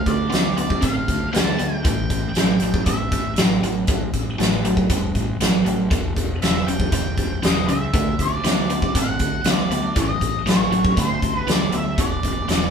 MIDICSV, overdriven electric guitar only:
0, 0, Header, 1, 2, 480
1, 0, Start_track
1, 0, Tempo, 506757
1, 1748, Time_signature, 4, 2, 24, 8
1, 12032, End_track
2, 0, Start_track
2, 0, Title_t, "Overdriven electric guitar"
2, 0, Program_c, 0, 29
2, 0, Note_on_c, 0, 50, 72
2, 0, Note_on_c, 0, 57, 86
2, 249, Note_off_c, 0, 50, 0
2, 253, Note_off_c, 0, 57, 0
2, 281, Note_on_c, 0, 50, 76
2, 287, Note_on_c, 0, 59, 80
2, 508, Note_off_c, 0, 50, 0
2, 511, Note_off_c, 0, 59, 0
2, 540, Note_on_c, 0, 50, 63
2, 540, Note_on_c, 0, 59, 73
2, 758, Note_off_c, 0, 50, 0
2, 758, Note_off_c, 0, 59, 0
2, 771, Note_on_c, 0, 60, 81
2, 772, Note_on_c, 0, 50, 80
2, 1211, Note_off_c, 0, 60, 0
2, 1212, Note_off_c, 0, 50, 0
2, 1262, Note_on_c, 0, 50, 85
2, 1265, Note_on_c, 0, 59, 91
2, 1481, Note_off_c, 0, 50, 0
2, 1482, Note_off_c, 0, 59, 0
2, 1503, Note_on_c, 0, 50, 80
2, 1508, Note_on_c, 0, 59, 86
2, 1721, Note_off_c, 0, 50, 0
2, 1724, Note_off_c, 0, 59, 0
2, 1748, Note_on_c, 0, 45, 78
2, 1754, Note_on_c, 0, 52, 79
2, 2181, Note_off_c, 0, 45, 0
2, 2184, Note_off_c, 0, 52, 0
2, 2242, Note_on_c, 0, 45, 78
2, 2246, Note_on_c, 0, 54, 89
2, 2452, Note_off_c, 0, 45, 0
2, 2454, Note_off_c, 0, 54, 0
2, 2485, Note_on_c, 0, 45, 68
2, 2488, Note_on_c, 0, 54, 72
2, 2694, Note_off_c, 0, 45, 0
2, 2696, Note_off_c, 0, 54, 0
2, 2718, Note_on_c, 0, 45, 76
2, 2723, Note_on_c, 0, 55, 87
2, 3147, Note_off_c, 0, 45, 0
2, 3150, Note_off_c, 0, 55, 0
2, 3206, Note_on_c, 0, 45, 76
2, 3215, Note_on_c, 0, 54, 85
2, 3415, Note_off_c, 0, 45, 0
2, 3420, Note_off_c, 0, 54, 0
2, 3441, Note_on_c, 0, 45, 73
2, 3444, Note_on_c, 0, 54, 86
2, 3653, Note_off_c, 0, 45, 0
2, 3654, Note_off_c, 0, 54, 0
2, 3677, Note_on_c, 0, 52, 73
2, 3678, Note_on_c, 0, 45, 66
2, 4107, Note_off_c, 0, 52, 0
2, 4108, Note_off_c, 0, 45, 0
2, 4155, Note_on_c, 0, 45, 82
2, 4156, Note_on_c, 0, 54, 76
2, 4370, Note_off_c, 0, 45, 0
2, 4370, Note_off_c, 0, 54, 0
2, 4403, Note_on_c, 0, 45, 63
2, 4408, Note_on_c, 0, 54, 82
2, 4614, Note_off_c, 0, 45, 0
2, 4616, Note_off_c, 0, 54, 0
2, 4639, Note_on_c, 0, 45, 73
2, 4645, Note_on_c, 0, 55, 97
2, 5068, Note_off_c, 0, 45, 0
2, 5071, Note_off_c, 0, 55, 0
2, 5122, Note_on_c, 0, 45, 81
2, 5126, Note_on_c, 0, 54, 79
2, 5333, Note_off_c, 0, 45, 0
2, 5335, Note_off_c, 0, 54, 0
2, 5352, Note_on_c, 0, 45, 69
2, 5361, Note_on_c, 0, 54, 71
2, 5568, Note_off_c, 0, 45, 0
2, 5573, Note_off_c, 0, 54, 0
2, 5596, Note_on_c, 0, 40, 73
2, 5608, Note_on_c, 0, 47, 71
2, 6026, Note_off_c, 0, 40, 0
2, 6032, Note_off_c, 0, 47, 0
2, 6089, Note_on_c, 0, 40, 73
2, 6092, Note_on_c, 0, 49, 73
2, 6297, Note_off_c, 0, 40, 0
2, 6298, Note_off_c, 0, 49, 0
2, 6324, Note_on_c, 0, 40, 56
2, 6330, Note_on_c, 0, 49, 77
2, 6534, Note_off_c, 0, 40, 0
2, 6537, Note_off_c, 0, 49, 0
2, 6557, Note_on_c, 0, 40, 76
2, 6560, Note_on_c, 0, 50, 84
2, 6986, Note_off_c, 0, 40, 0
2, 6987, Note_off_c, 0, 50, 0
2, 7036, Note_on_c, 0, 40, 77
2, 7039, Note_on_c, 0, 49, 81
2, 7249, Note_off_c, 0, 40, 0
2, 7251, Note_off_c, 0, 49, 0
2, 7279, Note_on_c, 0, 40, 78
2, 7282, Note_on_c, 0, 49, 81
2, 7491, Note_off_c, 0, 40, 0
2, 7492, Note_off_c, 0, 49, 0
2, 7516, Note_on_c, 0, 50, 65
2, 7521, Note_on_c, 0, 57, 77
2, 7944, Note_off_c, 0, 50, 0
2, 7947, Note_off_c, 0, 57, 0
2, 7995, Note_on_c, 0, 50, 81
2, 8000, Note_on_c, 0, 59, 88
2, 8208, Note_off_c, 0, 50, 0
2, 8210, Note_off_c, 0, 59, 0
2, 8238, Note_on_c, 0, 50, 63
2, 8245, Note_on_c, 0, 59, 75
2, 8449, Note_off_c, 0, 50, 0
2, 8453, Note_off_c, 0, 59, 0
2, 8482, Note_on_c, 0, 50, 73
2, 8491, Note_on_c, 0, 60, 86
2, 8907, Note_off_c, 0, 50, 0
2, 8911, Note_off_c, 0, 60, 0
2, 8960, Note_on_c, 0, 50, 78
2, 8963, Note_on_c, 0, 59, 89
2, 9170, Note_off_c, 0, 50, 0
2, 9171, Note_off_c, 0, 59, 0
2, 9196, Note_on_c, 0, 50, 79
2, 9202, Note_on_c, 0, 59, 86
2, 9407, Note_off_c, 0, 50, 0
2, 9410, Note_off_c, 0, 59, 0
2, 9433, Note_on_c, 0, 45, 72
2, 9439, Note_on_c, 0, 52, 79
2, 9861, Note_off_c, 0, 45, 0
2, 9864, Note_off_c, 0, 52, 0
2, 9909, Note_on_c, 0, 45, 79
2, 9917, Note_on_c, 0, 54, 89
2, 10123, Note_off_c, 0, 45, 0
2, 10127, Note_off_c, 0, 54, 0
2, 10144, Note_on_c, 0, 45, 66
2, 10153, Note_on_c, 0, 54, 76
2, 10361, Note_off_c, 0, 45, 0
2, 10365, Note_off_c, 0, 54, 0
2, 10387, Note_on_c, 0, 50, 81
2, 10394, Note_on_c, 0, 57, 93
2, 10818, Note_off_c, 0, 50, 0
2, 10821, Note_off_c, 0, 57, 0
2, 10869, Note_on_c, 0, 50, 77
2, 10874, Note_on_c, 0, 59, 80
2, 11083, Note_off_c, 0, 50, 0
2, 11085, Note_off_c, 0, 59, 0
2, 11108, Note_on_c, 0, 50, 70
2, 11108, Note_on_c, 0, 59, 76
2, 11322, Note_off_c, 0, 50, 0
2, 11322, Note_off_c, 0, 59, 0
2, 11351, Note_on_c, 0, 40, 70
2, 11357, Note_on_c, 0, 47, 81
2, 11779, Note_off_c, 0, 40, 0
2, 11782, Note_off_c, 0, 47, 0
2, 11825, Note_on_c, 0, 40, 84
2, 11829, Note_on_c, 0, 49, 79
2, 12032, Note_off_c, 0, 40, 0
2, 12032, Note_off_c, 0, 49, 0
2, 12032, End_track
0, 0, End_of_file